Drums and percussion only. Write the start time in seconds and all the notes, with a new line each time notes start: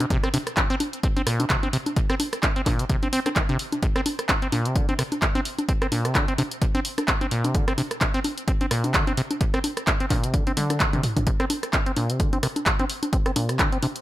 0.00 closed hi-hat, high conga
0.10 kick, closed hi-hat
0.24 cross-stick, closed hi-hat
0.34 open hi-hat, high conga
0.47 cross-stick, closed hi-hat
0.57 kick, clap, closed hi-hat, high conga
0.70 closed hi-hat
0.80 open hi-hat, high conga
0.93 closed hi-hat
1.03 kick, closed hi-hat
1.17 closed hi-hat, high conga
1.27 cross-stick, open hi-hat
1.40 closed hi-hat, high conga
1.50 kick, clap, closed hi-hat
1.63 closed hi-hat, high conga
1.73 open hi-hat
1.86 closed hi-hat, high conga
1.96 kick, closed hi-hat
2.10 cross-stick, closed hi-hat
2.20 open hi-hat, high conga
2.33 cross-stick, closed hi-hat
2.43 kick, clap, closed hi-hat, high conga
2.56 closed hi-hat
2.66 kick, clap, open hi-hat, high conga
2.79 closed hi-hat
2.90 kick, closed hi-hat
3.03 closed hi-hat, high conga
3.13 open hi-hat
3.26 cross-stick, closed hi-hat, high conga
3.36 kick, clap, closed hi-hat
3.49 closed hi-hat, high conga
3.59 open hi-hat
3.72 closed hi-hat, high conga
3.83 kick, closed hi-hat
3.96 cross-stick, closed hi-hat
4.06 open hi-hat, high conga
4.19 cross-stick, closed hi-hat
4.29 kick, clap, closed hi-hat, high conga
4.42 closed hi-hat
4.52 open hi-hat, high conga
4.65 closed hi-hat
4.76 kick, closed hi-hat
4.89 closed hi-hat, high conga
4.99 cross-stick, open hi-hat
5.12 closed hi-hat, high conga
5.22 kick, clap, closed hi-hat
5.35 closed hi-hat, high conga
5.45 open hi-hat
5.59 closed hi-hat, high conga
5.69 kick, closed hi-hat
5.82 cross-stick, closed hi-hat
5.92 open hi-hat, high conga
6.05 cross-stick, closed hi-hat
6.15 kick, clap, closed hi-hat, high conga
6.28 closed hi-hat
6.38 open hi-hat, high conga
6.51 closed hi-hat
6.62 kick, closed hi-hat
6.75 closed hi-hat, high conga
6.85 open hi-hat
6.98 cross-stick, closed hi-hat, high conga
7.08 kick, clap, closed hi-hat
7.21 closed hi-hat, high conga
7.31 open hi-hat
7.44 closed hi-hat, high conga
7.55 kick, closed hi-hat
7.68 cross-stick, closed hi-hat
7.78 open hi-hat, high conga
7.91 cross-stick, closed hi-hat
8.01 kick, clap, closed hi-hat, high conga
8.14 closed hi-hat
8.24 open hi-hat, high conga
8.38 closed hi-hat
8.48 kick, closed hi-hat
8.61 closed hi-hat, high conga
8.71 cross-stick, open hi-hat
8.84 closed hi-hat, high conga
8.94 kick, clap, closed hi-hat
9.07 closed hi-hat, high conga
9.17 open hi-hat
9.31 closed hi-hat, high conga
9.41 kick, closed hi-hat
9.54 cross-stick, closed hi-hat
9.64 open hi-hat, high conga
9.77 cross-stick, closed hi-hat
9.87 kick, clap, closed hi-hat, high conga
10.00 closed hi-hat
10.10 kick, clap, open hi-hat, high conga
10.24 closed hi-hat
10.34 kick, closed hi-hat
10.47 closed hi-hat, high conga
10.57 open hi-hat, high tom
10.70 cross-stick, closed hi-hat, high conga
10.80 kick, clap, closed hi-hat, mid tom
10.93 closed hi-hat, mid tom, high conga
11.03 mid tom, open hi-hat
11.17 kick, closed hi-hat, mid tom, high conga
11.27 kick, closed hi-hat
11.40 cross-stick, closed hi-hat
11.50 open hi-hat, high conga
11.63 cross-stick, closed hi-hat
11.73 kick, clap, closed hi-hat, high conga
11.86 closed hi-hat
11.96 open hi-hat, high conga
12.10 closed hi-hat
12.20 kick, closed hi-hat
12.33 closed hi-hat, high conga
12.43 cross-stick, open hi-hat
12.56 closed hi-hat, high conga
12.66 kick, clap, closed hi-hat
12.79 closed hi-hat, high conga
12.90 open hi-hat
13.03 closed hi-hat, high conga
13.13 kick, closed hi-hat
13.26 cross-stick, closed hi-hat
13.36 open hi-hat, high conga
13.49 cross-stick, closed hi-hat
13.59 kick, clap, closed hi-hat, high conga
13.72 closed hi-hat
13.83 open hi-hat, high conga
13.96 closed hi-hat